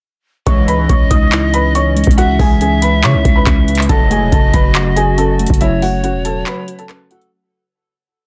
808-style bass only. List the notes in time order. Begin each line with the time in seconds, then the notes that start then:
0.47 C#2
0.89 C#2
1.11 C#2
2.07 C#2
2.39 C#2
3.04 C#3
3.14 C#2
3.25 C#2
3.47 C#2
3.89 F#1
4.22 E1
4.32 F#1
4.54 F#1
5.50 F#1
6.14 E1